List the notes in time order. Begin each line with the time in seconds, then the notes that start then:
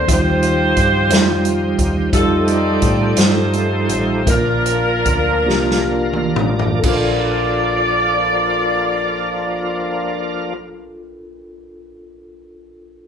Already playing: A#2 A#3 D4 C5 A5
0.07 D#2 D#3 F3 C4 D#4 F4 G4 C5, kick, closed hi-hat
0.11 G3 F4 G4 C5
0.43 closed hi-hat
0.77 G2, kick, closed hi-hat
1.10 F2 G3 D#4 F4 C5, snare, closed hi-hat
1.45 closed hi-hat
1.78 D#2, kick, closed hi-hat
2.12 F2 F3 G3 A3 D#4 F4 G4 A4, kick, closed hi-hat
2.16 C4
2.20 G4 A4
2.48 G4 A4 D5, closed hi-hat
2.82 A2, kick, closed hi-hat
3.15 G2 G3 D#4 F4 A4 C5, snare, closed hi-hat
3.53 closed hi-hat
3.89 A1, closed hi-hat
4.26 A#1 A#2 F3 A#3 D4 F4 A#4, kick, closed hi-hat
4.30 D4 F4 A#4
4.66 closed hi-hat
5.05 D2, kick, closed hi-hat
5.46 C2 A#3 D4 F4 G4, snare
5.71 snare
5.91 F5
6.13 mid tom
6.36 A1 D5, mid tom
6.59 floor tom
6.80 D4 A4
6.84 A#1 F3 A#3 D4 F4 D5, kick, crash
6.89 A#4